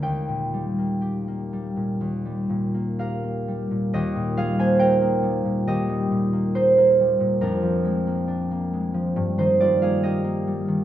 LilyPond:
<<
  \new Staff \with { instrumentName = "Harp" } { \time 4/4 \key ees \major \tempo 4 = 69 g''2. <bes' f''>4 | <g' ees''>8 <aes' f''>16 <c'' aes''>16 <bes' g''>4 <g' ees''>4 <ees' c''>4 | <d' bes'>2~ <d' bes'>16 <ees' c''>16 <f' d''>16 <aes' f''>16 <g' ees''>4 | }
  \new Staff \with { instrumentName = "Harp" } { \clef bass \time 4/4 \key ees \major <ees, bes>16 bes,16 g16 bes16 g'16 bes16 g16 bes,16 ees,16 g16 bes,16 bes16 g'16 bes16 g16 bes,16 | ees,16 bes,16 g16 bes16 ees'16 bes16 g16 bes,16 ees,16 g16 bes,16 bes8 bes16 g16 bes,16 | f,16 f16 aes16 bes16 d'16 bes16 aes16 f16 g,16 ees16 g16 bes16 ees'16 bes16 g16 ees16 | }
>>